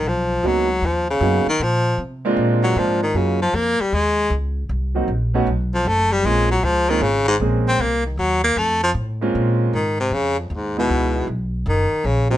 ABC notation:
X:1
M:4/4
L:1/8
Q:"Swing" 1/4=155
K:Bbm
V:1 name="Grand piano"
z2 [^F,^A,=B,^C^D] z3 [F,A,B,CD] z | z3 [A,B,C=DF]3 [A,B,CDF] z | [G,B,DEF] z6 z | z [G,B,CEG] z [=A,_CDEG] z4 |
[A,B,CDF] z2 [A,B,CDF] z2 [A,B,CDA]2 | z6 z [A,B,CDF]- | [A,B,CDF]2 z4 z [A,_CE=E]- | [A,_CE=E]2 z4 z [G,B,D_E] |]
V:2 name="Baritone saxophone" clef=bass
F,2 ^F,2 =F, ^C,2 ^D, | F,2 z3 G, F, E, | D, F, B, =G, A,2 z2 | z4 z F, =A, =G, |
A, G, F, E, D, A,, z C | B, E, G, B, =A, F, z2 | z2 E, C, D, F,, A,, _C,- | _C,2 z2 E,2 D, =C, |]
V:3 name="Upright bass" clef=bass
=B,,,2 ^C,,2 ^D,,2 ^F,, z | B,,2 C,2 B,,2 A,,2 | G,,2 F,, z E,,2 D,,2 | C,,2 B,,,2 =B,,,2 ^F,,,2 |
B,,,2 D,,2 A,,,2 B,,,2 | C,,2 E,,2 F,,2 =A,,2 | B,,2 A,,2 F,,2 E,,2 | D,,2 _C,,2 G,,, z B,,,2 |]